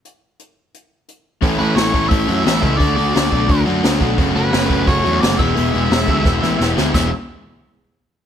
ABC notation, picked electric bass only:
X:1
M:4/4
L:1/8
Q:1/4=174
K:Emix
V:1 name="Picked electric bass" clef=bass
z8 | A,,, A,,, A,,, A,,, A,,, F,, A,,, C,, | D,, D,, D,, B,,, D,, F,, D,, B,,, | F,,, F,,, F,,, F,,, F,,, E,, F,,, E,,, |
E,,, E,,, E,,, D,, E,,, A,,, E,,, D,, | E,,, z6 z |]